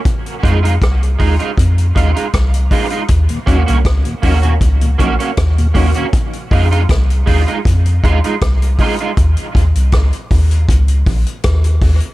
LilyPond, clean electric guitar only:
\new Staff \with { instrumentName = "Clean electric guitar" } { \time 4/4 \key f \phrygian \tempo 4 = 79 r8 <aes ees' f'>16 <aes ees' f'>16 r8 <aes ees' f'>16 <aes ees' f'>16 r8 <aes ees' f'>16 <aes ees' f'>16 r8 <aes ees' f'>16 <aes ees' f'>16 | r8 <bes des' ges'>16 <bes des' ges'>16 r8 <bes des' ges'>16 <bes des' ges'>16 r8 <bes des' ges'>16 <bes des' ges'>16 r8 <bes des' ges'>16 <bes des' ges'>16 | r8 <aes ees' f'>16 <aes ees' f'>16 r8 <aes ees' f'>16 <aes ees' f'>16 r8 <aes ees' f'>16 <aes ees' f'>16 r8 <aes ees' f'>16 <aes ees' f'>16 | r1 | }